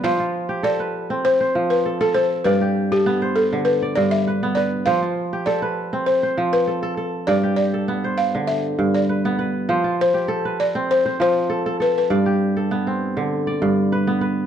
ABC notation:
X:1
M:4/4
L:1/16
Q:1/4=100
K:Flyd
V:1 name="Balafon"
f4 d4 c3 B2 A c2 | B3 G3 A2 B2 d e3 d2 | f4 d4 c3 B4- B | d2 d4 f2 e3 d3 z2 |
z2 c4 d2 c2 c4 B B- | B12 z4 |]
V:2 name="Kora"
[Bc] F2 G2 B3 z c3 A2 A2 | d G2 A2 c3 z d3 B2 B2 | c F2 G2 B3 z c3 A2 A2 | d G2 A2 c3 z4 B2 B2 |
c F2 G2 B3 z c3 A2 A2 | d G2 A2 C3 z d3 B2 B2 |]
V:3 name="Kora" clef=bass
F,2 z2 A2 z C2 z F,2 z A2 z | G,,2 z2 B,2 z D,2 z G,,2 z B,2 z | F,2 z2 A2 z C2 z F,2 z A2 z | G,,2 z2 B,2 z D,2 z G,,2 z B,2 z |
F,2 z2 A2 z C2 z F,2 z A2 z | G,,2 z2 B,2 z D,2 z G,,2 z B,2 z |]